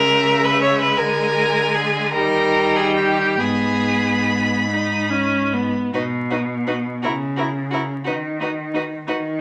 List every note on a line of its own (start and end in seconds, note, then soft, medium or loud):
0.00 0.97 C#3 medium
0.00 2.15 G#3 medium
0.00 0.46 A#4 medium
0.00 0.99 E5 medium
0.44 0.61 B4 medium
0.62 0.79 C#5 medium
0.81 0.99 B4 medium
0.98 2.15 D3 medium
0.98 1.76 A#4 medium
0.98 2.13 G#5 medium
1.74 2.11 G#4 medium
2.12 3.40 D#3 medium
2.12 3.40 G3 medium
2.12 2.77 A#4 medium
2.12 3.41 G5 medium
2.76 2.96 G#4 medium
2.96 3.41 G4 medium
3.39 5.68 G#2 medium
3.39 4.58 B3 medium
3.39 4.68 G#4 medium
3.39 5.72 B5 medium
4.70 5.11 D#4 medium
5.10 5.55 C#4 medium
5.53 5.93 B3 medium
5.94 6.90 B2 medium
5.94 6.02 D#4 soft
5.94 6.02 F#4 medium
5.94 6.02 B4 medium
6.30 6.39 D#4 soft
6.30 6.38 F#4 soft
6.30 6.39 B4 soft
6.67 6.76 D#4 soft
6.67 6.75 F#4 soft
6.67 6.75 B4 soft
7.02 7.94 C#3 medium
7.02 7.12 E4 medium
7.02 7.10 F#4 medium
7.02 7.11 A#4 soft
7.36 7.47 E4 soft
7.36 7.44 F#4 soft
7.36 7.46 A#4 soft
7.71 7.81 E4 soft
7.71 7.79 F#4 soft
7.71 7.81 A#4 soft
8.04 8.96 D#3 medium
8.04 8.15 D#4 soft
8.04 8.12 F#4 soft
8.04 8.14 B4 soft
8.40 8.48 D#4 soft
8.40 8.49 F#4 soft
8.40 8.50 B4 soft
8.74 8.82 D#4 soft
8.74 8.83 F#4 soft
8.74 8.83 B4 soft
9.07 9.41 D#3 medium
9.07 9.15 D#4 soft
9.07 9.16 F#4 medium
9.07 9.16 B4 soft